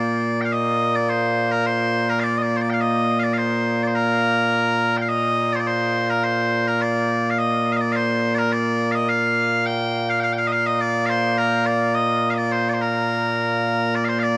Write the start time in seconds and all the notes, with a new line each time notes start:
Already playing: A#2 A#3 D5
0.41 F5 G5
0.52 D#5
0.95 D5
1.09 C5
1.51 A#4
1.66 C5
2.09 A#4
2.20 D5 F5
2.38 D#5
2.42 D5
2.56 C5
2.61 D5
2.70 F5 G5
2.81 D#5
3.19 F5
3.23 D5
3.33 F5
3.38 C5
3.83 D5
3.87 C5
3.95 A#4
4.97 G5
5.01 F5
5.09 D#5
5.52 C5 D5
5.60 D5
5.67 C5
6.10 A#4
6.23 C5
6.67 A#4
6.81 D5
7.30 F5
7.38 D#5
7.72 F5
7.77 D#5
7.81 D5
7.92 C5 F5
8.35 A#4 D5
8.52 D5
8.91 D#5 F5
9.09 F5
9.66 G5
10.09 F5
10.20 F5 G5
10.33 G5
10.38 F5
10.47 D#5
10.52 F5
10.66 D#5
10.81 D5
11.06 C5 F5
11.38 A#4
11.66 D5
11.94 D#5
12.30 D#5 F5
12.38 D5
12.52 C5
12.69 D5
12.73 C5
12.81 A#4
13.95 D5
14.05 C5 F5
14.19 D5 F5